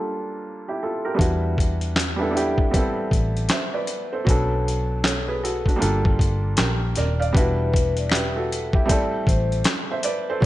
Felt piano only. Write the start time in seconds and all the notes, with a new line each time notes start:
Already playing: G3 A#3 D4 F4 A4
0.68 E4 G4
0.83 F4 A4
1.05 G4 A#4
1.14 G3 B3 D4
1.19 E4 F#4
2.16 G3 B3 D4
2.20 E4 A4
2.31 G3 B3 D4
2.35 E4 G4
2.71 G3 B3 C4
2.75 E4 A4
3.51 C5 E5
3.74 B4 D5
4.13 A4 C5
4.25 F#3 B3 C#4
4.29 D4 A4
5.04 A4 C#5
5.28 G#4 B4
5.43 F#4 A4
5.68 D4 F#4
5.76 G3 A#3 D4
5.80 F4 A4
6.57 G4 A#4
6.97 A#4 D5
7.20 D5 F5
7.33 G3 B3 D4
7.37 E4 F#4
8.14 G4 B4
8.36 F#4 A4
8.74 E4 G4
8.85 G3 A3 C4
8.90 E4 A4
9.91 C5 E5
10.04 B4 D5
10.30 A4 C5
10.40 F#3 B3